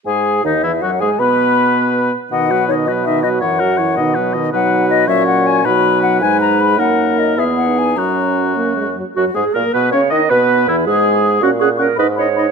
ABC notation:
X:1
M:6/8
L:1/16
Q:3/8=106
K:E
V:1 name="Flute"
g4 d2 e2 f2 g2 | b8- b2 z2 | f4 c2 d2 e2 d2 | f8- f2 z2 |
[K:B] f4 d2 e2 f2 g2 | b4 f2 g2 a2 b2 | f4 d2 e2 f2 g2 | a6 z6 |
F2 G2 A2 B2 c2 d2 | B4 E2 G6 | c'2 c'2 c'2 b2 b2 b2 |]
V:2 name="Oboe"
G4 D2 E2 F2 G2 | B8- B2 z2 | d2 B2 d2 B2 d2 B2 | c2 ^A2 c2 d2 B2 d2 |
[K:B] B6 c6 | B6 B6 | A6 G6 | F8- F2 z2 |
F2 G2 A2 B2 c2 d2 | B4 E2 G6 | f2 f2 f2 d2 d2 d2 |]
V:3 name="Clarinet"
G4 D2 E2 F2 G2 | B8- B2 z2 | D2 F2 D2 F2 D2 F2 | E2 F2 E2 D2 F2 D2 |
[K:B] D6 C6 | D6 D6 | D6 E3 D3 | C8- C2 z2 |
F2 G2 A2 B2 c2 d2 | B4 E2 G6 | F2 G2 A2 B2 c4 |]
V:4 name="French horn" clef=bass
G,4 D,2 E,2 F,2 G,2 | B,8- B,2 z2 | D,2 F,2 D,2 F,2 D,2 F,2 | E,2 F,2 E,2 D,2 F,2 D,2 |
[K:B] F,6 F,6 | F,6 G,6 | A,6 B,6 | F,6 A,2 G,2 F,2 |
F,2 G,2 A,2 B,2 C2 D2 | B,4 E,2 G,6 | C2 C2 C2 D2 D2 D2 |]
V:5 name="Bassoon" clef=bass
G,,4 D,,2 E,,2 F,,2 G,,2 | B,,8- B,,2 z2 | B,,12 | F,,6 B,,6 |
[K:B] B,,6 A,,6 | B,,6 G,,6 | F,,6 E,,6 | F,,8- F,,2 z2 |
F,,2 G,,2 A,,2 B,,2 C,2 D,2 | B,,4 E,,2 G,,6 | A,,6 G,,6 |]